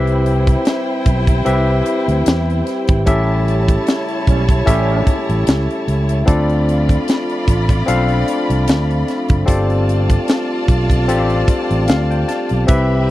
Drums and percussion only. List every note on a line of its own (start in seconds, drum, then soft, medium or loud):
0.07 closed hi-hat soft
0.26 closed hi-hat medium
0.47 kick medium
0.47 closed hi-hat soft
0.65 snare loud
0.65 closed hi-hat medium
1.06 kick medium
1.06 closed hi-hat medium
1.27 kick loud
1.27 closed hi-hat soft
1.46 closed hi-hat loud
1.86 closed hi-hat medium
2.09 closed hi-hat soft
2.26 snare loud
2.26 closed hi-hat loud
2.50 closed hi-hat soft
2.67 snare soft
2.67 closed hi-hat medium
2.88 kick loud
2.88 closed hi-hat soft
3.07 kick loud
3.07 closed hi-hat medium
3.48 closed hi-hat medium
3.68 kick medium
3.68 closed hi-hat soft
3.87 snare loud
3.87 closed hi-hat medium
4.08 closed hi-hat soft
4.27 kick medium
4.27 closed hi-hat medium
4.49 kick loud
4.49 closed hi-hat soft
4.67 kick medium
4.67 closed hi-hat loud
5.07 kick medium
5.07 closed hi-hat medium
5.30 closed hi-hat soft
5.47 snare loud
5.47 closed hi-hat medium
5.70 closed hi-hat soft
5.88 closed hi-hat medium
6.09 closed hi-hat medium
6.28 kick loud
6.28 closed hi-hat medium
6.50 closed hi-hat soft
6.69 closed hi-hat medium
6.89 kick medium
6.89 closed hi-hat soft
7.08 snare loud
7.08 closed hi-hat medium
7.30 closed hi-hat soft
7.48 kick medium
7.48 closed hi-hat medium
7.69 kick medium
7.69 closed hi-hat medium
7.88 closed hi-hat loud
8.09 closed hi-hat soft
8.28 closed hi-hat medium
8.50 closed hi-hat soft
8.68 snare loud
8.68 closed hi-hat medium
8.91 closed hi-hat soft
9.08 snare soft
9.08 closed hi-hat medium
9.29 kick loud
9.29 closed hi-hat soft
9.48 kick loud
9.48 closed hi-hat medium
9.70 closed hi-hat soft
9.89 closed hi-hat medium
10.10 kick medium
10.10 closed hi-hat medium
10.28 snare loud
10.28 closed hi-hat medium
10.68 kick medium
10.68 closed hi-hat medium
10.90 kick medium
10.90 closed hi-hat soft
11.09 closed hi-hat loud
11.30 closed hi-hat soft
11.48 kick loud
11.48 closed hi-hat medium
11.71 closed hi-hat soft
11.88 snare loud
11.88 closed hi-hat medium
12.11 closed hi-hat soft
12.29 snare soft
12.29 closed hi-hat medium
12.49 closed hi-hat soft
12.68 kick loud
12.68 closed hi-hat medium